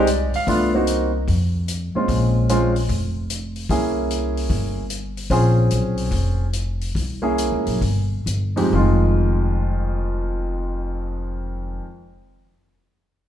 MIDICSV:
0, 0, Header, 1, 5, 480
1, 0, Start_track
1, 0, Key_signature, -4, "minor"
1, 0, Tempo, 402145
1, 569, Time_signature, 4, 2, 24, 8
1, 6809, Tempo, 416667
1, 8729, Tempo, 452148
1, 10169, Tempo, 473934
1, 14785, End_track
2, 0, Start_track
2, 0, Title_t, "Grand piano"
2, 0, Program_c, 0, 0
2, 0, Note_on_c, 0, 74, 74
2, 375, Note_off_c, 0, 74, 0
2, 425, Note_on_c, 0, 77, 88
2, 565, Note_on_c, 0, 59, 61
2, 569, Note_on_c, 0, 57, 67
2, 571, Note_on_c, 0, 62, 66
2, 576, Note_on_c, 0, 65, 75
2, 850, Note_off_c, 0, 59, 0
2, 852, Note_off_c, 0, 57, 0
2, 853, Note_off_c, 0, 62, 0
2, 856, Note_off_c, 0, 65, 0
2, 862, Note_off_c, 0, 77, 0
2, 888, Note_on_c, 0, 58, 62
2, 889, Note_on_c, 0, 60, 56
2, 897, Note_on_c, 0, 63, 59
2, 900, Note_on_c, 0, 66, 71
2, 1303, Note_off_c, 0, 58, 0
2, 1303, Note_off_c, 0, 60, 0
2, 1307, Note_off_c, 0, 63, 0
2, 1309, Note_off_c, 0, 66, 0
2, 2331, Note_on_c, 0, 46, 60
2, 2338, Note_on_c, 0, 56, 52
2, 2338, Note_on_c, 0, 61, 52
2, 2340, Note_on_c, 0, 65, 66
2, 2343, Note_on_c, 0, 60, 53
2, 2939, Note_off_c, 0, 46, 0
2, 2942, Note_off_c, 0, 56, 0
2, 2942, Note_off_c, 0, 61, 0
2, 2944, Note_off_c, 0, 65, 0
2, 2945, Note_off_c, 0, 60, 0
2, 2978, Note_on_c, 0, 56, 64
2, 2980, Note_on_c, 0, 60, 57
2, 2981, Note_on_c, 0, 61, 63
2, 2989, Note_on_c, 0, 65, 75
2, 3257, Note_off_c, 0, 56, 0
2, 3258, Note_off_c, 0, 60, 0
2, 3258, Note_off_c, 0, 61, 0
2, 3262, Note_off_c, 0, 65, 0
2, 4421, Note_on_c, 0, 58, 61
2, 4426, Note_on_c, 0, 61, 54
2, 4426, Note_on_c, 0, 68, 67
2, 4431, Note_on_c, 0, 64, 58
2, 5755, Note_off_c, 0, 58, 0
2, 5758, Note_off_c, 0, 61, 0
2, 5758, Note_off_c, 0, 68, 0
2, 5760, Note_off_c, 0, 64, 0
2, 6332, Note_on_c, 0, 60, 67
2, 6344, Note_on_c, 0, 61, 61
2, 6345, Note_on_c, 0, 65, 64
2, 6352, Note_on_c, 0, 68, 70
2, 7657, Note_off_c, 0, 60, 0
2, 7662, Note_off_c, 0, 61, 0
2, 7663, Note_off_c, 0, 65, 0
2, 7666, Note_off_c, 0, 68, 0
2, 8553, Note_on_c, 0, 58, 67
2, 8563, Note_on_c, 0, 61, 61
2, 8564, Note_on_c, 0, 64, 56
2, 8567, Note_on_c, 0, 68, 71
2, 9161, Note_off_c, 0, 58, 0
2, 9165, Note_off_c, 0, 61, 0
2, 9165, Note_off_c, 0, 64, 0
2, 9167, Note_off_c, 0, 68, 0
2, 9992, Note_on_c, 0, 41, 66
2, 9997, Note_on_c, 0, 60, 54
2, 10000, Note_on_c, 0, 56, 59
2, 10001, Note_on_c, 0, 63, 59
2, 10005, Note_on_c, 0, 67, 71
2, 10149, Note_off_c, 0, 41, 0
2, 10152, Note_off_c, 0, 60, 0
2, 10153, Note_off_c, 0, 56, 0
2, 10154, Note_off_c, 0, 63, 0
2, 10156, Note_off_c, 0, 67, 0
2, 10166, Note_on_c, 0, 41, 67
2, 10171, Note_on_c, 0, 51, 61
2, 10182, Note_on_c, 0, 56, 60
2, 10194, Note_on_c, 0, 65, 76
2, 13309, Note_off_c, 0, 41, 0
2, 13314, Note_off_c, 0, 51, 0
2, 13325, Note_off_c, 0, 56, 0
2, 13337, Note_off_c, 0, 65, 0
2, 14785, End_track
3, 0, Start_track
3, 0, Title_t, "Upright bass"
3, 0, Program_c, 1, 32
3, 0, Note_on_c, 1, 36, 85
3, 353, Note_off_c, 1, 36, 0
3, 559, Note_on_c, 1, 36, 79
3, 1476, Note_off_c, 1, 36, 0
3, 1529, Note_on_c, 1, 41, 72
3, 2276, Note_off_c, 1, 41, 0
3, 2484, Note_on_c, 1, 34, 73
3, 3398, Note_off_c, 1, 34, 0
3, 3447, Note_on_c, 1, 29, 78
3, 4359, Note_off_c, 1, 29, 0
3, 4410, Note_on_c, 1, 36, 81
3, 5321, Note_off_c, 1, 36, 0
3, 5370, Note_on_c, 1, 31, 78
3, 6281, Note_off_c, 1, 31, 0
3, 6327, Note_on_c, 1, 34, 80
3, 6775, Note_off_c, 1, 34, 0
3, 6821, Note_on_c, 1, 35, 74
3, 7251, Note_off_c, 1, 35, 0
3, 7283, Note_on_c, 1, 29, 82
3, 8193, Note_off_c, 1, 29, 0
3, 8246, Note_on_c, 1, 36, 73
3, 8846, Note_off_c, 1, 36, 0
3, 8886, Note_on_c, 1, 37, 55
3, 9029, Note_off_c, 1, 37, 0
3, 9044, Note_on_c, 1, 35, 71
3, 9187, Note_off_c, 1, 35, 0
3, 9200, Note_on_c, 1, 31, 78
3, 9644, Note_off_c, 1, 31, 0
3, 9674, Note_on_c, 1, 31, 71
3, 10134, Note_off_c, 1, 31, 0
3, 10168, Note_on_c, 1, 29, 79
3, 13271, Note_off_c, 1, 29, 0
3, 14785, End_track
4, 0, Start_track
4, 0, Title_t, "Muted upright bass strokes"
4, 413, Note_on_c, 9, 29, 37
4, 532, Note_off_c, 9, 29, 0
4, 2332, Note_on_c, 9, 29, 36
4, 2451, Note_off_c, 9, 29, 0
4, 14785, End_track
5, 0, Start_track
5, 0, Title_t, "Drums"
5, 84, Note_on_c, 9, 42, 61
5, 203, Note_off_c, 9, 42, 0
5, 403, Note_on_c, 9, 46, 39
5, 522, Note_off_c, 9, 46, 0
5, 563, Note_on_c, 9, 36, 35
5, 567, Note_on_c, 9, 46, 48
5, 683, Note_off_c, 9, 36, 0
5, 686, Note_off_c, 9, 46, 0
5, 1039, Note_on_c, 9, 42, 56
5, 1158, Note_off_c, 9, 42, 0
5, 1523, Note_on_c, 9, 36, 32
5, 1527, Note_on_c, 9, 46, 42
5, 1643, Note_off_c, 9, 36, 0
5, 1646, Note_off_c, 9, 46, 0
5, 2005, Note_on_c, 9, 42, 57
5, 2125, Note_off_c, 9, 42, 0
5, 2486, Note_on_c, 9, 36, 35
5, 2489, Note_on_c, 9, 46, 44
5, 2606, Note_off_c, 9, 36, 0
5, 2609, Note_off_c, 9, 46, 0
5, 2976, Note_on_c, 9, 42, 54
5, 3095, Note_off_c, 9, 42, 0
5, 3292, Note_on_c, 9, 46, 39
5, 3412, Note_off_c, 9, 46, 0
5, 3449, Note_on_c, 9, 36, 30
5, 3451, Note_on_c, 9, 46, 42
5, 3569, Note_off_c, 9, 36, 0
5, 3570, Note_off_c, 9, 46, 0
5, 3938, Note_on_c, 9, 42, 58
5, 4057, Note_off_c, 9, 42, 0
5, 4245, Note_on_c, 9, 46, 34
5, 4364, Note_off_c, 9, 46, 0
5, 4408, Note_on_c, 9, 36, 33
5, 4417, Note_on_c, 9, 46, 44
5, 4528, Note_off_c, 9, 36, 0
5, 4537, Note_off_c, 9, 46, 0
5, 4900, Note_on_c, 9, 42, 51
5, 5019, Note_off_c, 9, 42, 0
5, 5218, Note_on_c, 9, 46, 39
5, 5337, Note_off_c, 9, 46, 0
5, 5367, Note_on_c, 9, 36, 32
5, 5372, Note_on_c, 9, 46, 42
5, 5487, Note_off_c, 9, 36, 0
5, 5491, Note_off_c, 9, 46, 0
5, 5847, Note_on_c, 9, 42, 55
5, 5966, Note_off_c, 9, 42, 0
5, 6172, Note_on_c, 9, 46, 38
5, 6292, Note_off_c, 9, 46, 0
5, 6326, Note_on_c, 9, 36, 35
5, 6333, Note_on_c, 9, 46, 44
5, 6446, Note_off_c, 9, 36, 0
5, 6452, Note_off_c, 9, 46, 0
5, 6810, Note_on_c, 9, 42, 49
5, 6925, Note_off_c, 9, 42, 0
5, 7120, Note_on_c, 9, 46, 37
5, 7235, Note_off_c, 9, 46, 0
5, 7279, Note_on_c, 9, 36, 30
5, 7282, Note_on_c, 9, 46, 43
5, 7394, Note_off_c, 9, 36, 0
5, 7397, Note_off_c, 9, 46, 0
5, 7762, Note_on_c, 9, 42, 57
5, 7877, Note_off_c, 9, 42, 0
5, 8086, Note_on_c, 9, 46, 36
5, 8201, Note_off_c, 9, 46, 0
5, 8245, Note_on_c, 9, 36, 31
5, 8257, Note_on_c, 9, 46, 43
5, 8360, Note_off_c, 9, 36, 0
5, 8372, Note_off_c, 9, 46, 0
5, 8739, Note_on_c, 9, 42, 53
5, 8845, Note_off_c, 9, 42, 0
5, 9041, Note_on_c, 9, 46, 37
5, 9147, Note_off_c, 9, 46, 0
5, 9200, Note_on_c, 9, 36, 29
5, 9205, Note_on_c, 9, 46, 41
5, 9306, Note_off_c, 9, 36, 0
5, 9311, Note_off_c, 9, 46, 0
5, 9681, Note_on_c, 9, 42, 55
5, 9787, Note_off_c, 9, 42, 0
5, 10003, Note_on_c, 9, 46, 35
5, 10109, Note_off_c, 9, 46, 0
5, 14785, End_track
0, 0, End_of_file